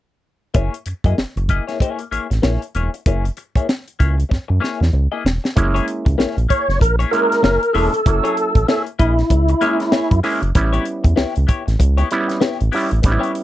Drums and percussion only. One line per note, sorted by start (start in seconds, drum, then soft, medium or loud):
0.54 kick loud
0.54 closed hi-hat medium
0.74 closed hi-hat medium
0.86 closed hi-hat medium
1.04 kick medium
1.04 closed hi-hat soft
1.18 snare medium
1.37 closed hi-hat soft
1.49 kick medium
1.49 closed hi-hat medium
1.69 snare soft
1.69 closed hi-hat soft
1.80 kick medium
1.80 closed hi-hat medium
1.99 closed hi-hat medium
2.12 closed hi-hat medium
2.31 snare soft
2.31 closed hi-hat soft
2.43 snare loud
2.62 closed hi-hat soft
2.75 closed hi-hat medium
2.94 closed hi-hat medium
3.06 kick loud
3.06 closed hi-hat medium
3.25 closed hi-hat medium
3.37 closed hi-hat medium
3.56 kick medium
3.56 closed hi-hat medium
3.69 snare loud
3.88 closed hi-hat soft
4.00 kick medium
4.00 closed hi-hat medium
4.20 closed hi-hat soft
4.31 kick medium
4.31 snare soft
4.64 snare medium
4.83 snare medium
5.26 snare loud
5.45 snare medium
5.57 kick loud
5.57 closed hi-hat loud
5.76 closed hi-hat medium
5.88 closed hi-hat medium
6.06 kick medium
6.06 closed hi-hat soft
6.20 snare loud
6.38 closed hi-hat soft
6.50 kick medium
6.50 closed hi-hat medium
6.70 snare soft
6.70 closed hi-hat soft
6.81 kick medium
6.81 closed hi-hat medium
7.00 closed hi-hat medium
7.13 closed hi-hat medium
7.32 snare soft
7.32 closed hi-hat medium
7.44 snare loud
7.63 closed hi-hat medium
7.75 open hi-hat medium
7.94 closed hi-hat medium
8.06 kick loud
8.06 closed hi-hat medium
8.25 closed hi-hat medium
8.37 closed hi-hat medium
8.55 kick medium
8.55 closed hi-hat medium
8.69 snare loud
8.87 closed hi-hat soft
8.99 kick medium
8.99 closed hi-hat medium
9.19 snare soft
9.19 closed hi-hat soft
9.30 kick medium
9.30 closed hi-hat medium
9.48 closed hi-hat medium
9.61 closed hi-hat medium
9.80 snare soft
9.80 closed hi-hat soft
9.92 snare loud
10.11 kick medium
10.11 closed hi-hat medium
10.24 open hi-hat medium
10.43 closed hi-hat medium
10.55 kick loud
10.55 closed hi-hat loud
10.74 closed hi-hat medium
10.85 closed hi-hat medium
11.04 kick medium
11.04 closed hi-hat soft
11.17 snare loud
11.36 closed hi-hat soft
11.48 kick medium
11.48 closed hi-hat medium
11.68 snare soft
11.68 closed hi-hat soft
11.80 kick medium
11.80 closed hi-hat medium
11.98 closed hi-hat medium
12.11 closed hi-hat medium
12.29 snare soft
12.29 closed hi-hat soft
12.41 snare loud
12.60 closed hi-hat medium
12.73 open hi-hat medium
12.91 closed hi-hat medium
13.03 kick loud
13.03 closed hi-hat medium
13.23 closed hi-hat medium
13.35 closed hi-hat medium